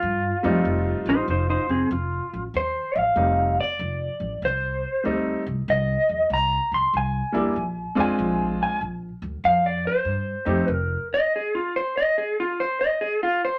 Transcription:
Already playing: clean electric guitar F4
0.02 upright bass G2
0.43 upright bass F2, upright piano G3 A3 C4 D#4
0.65 upright bass F1
1.05 upright bass A1, electric slide guitar D#4
1.10 electric slide guitar C5
1.28 upright bass F1, electric slide guitar D#4 C5
1.50 electric slide guitar D#4 C5
1.69 upright bass F1, electric slide guitar C4 G#4
1.91 upright bass F1, electric slide guitar F4
2.33 upright bass A1
2.54 upright bass D#2, clean electric guitar C5
2.95 upright bass A1, clean electric guitar F5
3.16 upright bass F1, upright piano G3 A3 C4 D#4
3.60 clean electric guitar D5
3.79 upright bass F1
4.20 upright bass A1
4.42 upright bass C2, clean electric guitar C5
5.04 upright bass D2, upright piano G3 A3 C4 D#4
5.46 upright bass C2
5.68 upright bass C2, clean electric guitar D#5
6.09 upright bass E2
6.30 upright bass C2, clean electric guitar A#5
6.72 upright bass C2, clean electric guitar C6
6.93 upright bass C2, clean electric guitar G#5
7.32 upright bass E2, upright piano G3 A#3 D4 E4
7.56 upright bass A#1
7.95 upright bass E2, upright piano G#3 C4 D4 F4
8.00 clean electric guitar G#5
8.19 upright bass A#1
8.63 clean electric guitar G#5
8.81 upright bass A#1
9.22 upright bass D2
9.44 upright bass F2, clean electric guitar F5
9.66 clean electric guitar D5
9.87 clean electric guitar C5
10.05 upright bass G2
10.45 upright bass F2, upright piano A3 C4 D#4 G4
10.68 upright bass F1
10.72 clean electric guitar A#4
11.14 clean electric guitar D#5
11.36 clean electric guitar G#4
11.55 clean electric guitar F4
11.76 clean electric guitar C5
11.97 clean electric guitar D#5
12.18 clean electric guitar G#4
12.40 clean electric guitar F4
12.60 clean electric guitar C5
12.81 clean electric guitar D#5
13.01 clean electric guitar G#4
13.23 clean electric guitar F4
13.45 clean electric guitar C5

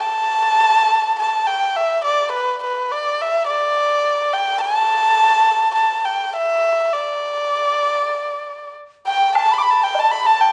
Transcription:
0.00 erhu A5
1.19 erhu A5
1.47 erhu G5
1.76 erhu E5
2.04 erhu D5
2.32 erhu B4
2.64 erhu B4
2.92 erhu D5
3.21 erhu E5
3.47 erhu D5
4.33 erhu G5
4.61 erhu A5
5.75 erhu A5
6.05 erhu G5
6.36 erhu E5
6.93 erhu D5
9.05 dizi G5, erhu G5
9.35 dizi A5, erhu A5, high woodblock
9.51 dizi B5, erhu B5
9.58 dizi B5, erhu D6
9.62 erhu B5
9.70 erhu A5
9.83 dizi G5, erhu G5
9.95 dizi A5, low woodblock
9.99 erhu A5
10.11 erhu B5, dizi B5
10.25 dizi A5, erhu A5
10.41 erhu G5

